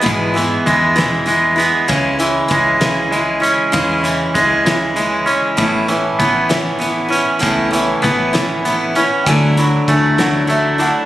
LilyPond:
<<
  \new Staff \with { instrumentName = "Upright piano" } { \time 6/8 \key cis \phrygian \tempo 4. = 65 r2. | r2. | r2. | r2. |
r2. | <g'' gis''>8 b''8 gis''8 fis''8 e''8 fis''8 | }
  \new Staff \with { instrumentName = "Steel-string acoustic guitar" } { \time 6/8 \key cis \phrygian <e, b, e gis b e'>8 <e gis b e'>8 <e gis b e'>8 <e, b, e gis b e'>8 <e gis b e'>8 <e gis b e'>8 | <cis e gis cis' e'>8 <gis cis' e'>8 <e gis cis' e'>8 <cis e gis cis' e'>8 <e gis cis' e'>8 <gis cis' e'>8 | <cis e gis cis' e'>8 <gis cis' e'>8 <e gis cis' e'>8 <cis e gis cis' e'>8 <e gis cis' e'>8 <gis cis' e'>8 | <a, e b cis' e'>8 <b cis' e'>8 <e b cis' e'>8 <a, e b cis' e'>8 <e b cis' e'>8 <b cis' e'>8 |
<a, e b cis' e'>8 <b cis' e'>8 <e b cis' e'>8 <a, e b cis' e'>8 <e b cis' e'>8 <b cis' e'>8 | <d fis a d' e'>8 <a d' e'>8 <fis a d' e'>8 <d fis a d' e'>8 <fis a d' e'>8 <a d' e'>8 | }
  \new Staff \with { instrumentName = "Clean electric guitar" } { \clef bass \time 6/8 \key cis \phrygian <e, e gis b>8 e8 gis8 e8 gis8 b8 | cis8 e8 gis8 e8 gis8 cis'8 | cis8 e8 gis8 e8 gis8 cis'8 | a,8 e8 b8 e8 b8 cis'8 |
a,8 e8 b8 e8 b8 cis'8 | d8 fis8 a8 fis8 a8 d'8 | }
  \new Staff \with { instrumentName = "Fingered electric bass" } { \clef bass \time 6/8 \key cis \phrygian gis,4 e,2 | cis,4 cis,2 | e,4 cis,2 | a,,4 a,,2 |
cis,4 a,,2 | d,4 d,2 | }
  \new DrumStaff \with { instrumentName = "Drums" } \drummode { \time 6/8 <hh bd>8 hh8 <hh bd>8 <hh sn>8 hh8 hh8 | <hh bd>8 hh8 <hh bd>8 <hh sn>8 hh8 hh8 | <hh bd>8 hh8 <hh bd>8 <hh sn>8 hh8 hh8 | <hh bd>8 hh8 <hh bd>8 <hh sn>8 hh8 hh8 |
<hh bd>8 hh8 <hh bd>8 <hh sn>8 hh8 hh8 | <hh bd>8 hh8 <hh bd>8 <hh sn>8 hh8 hh8 | }
>>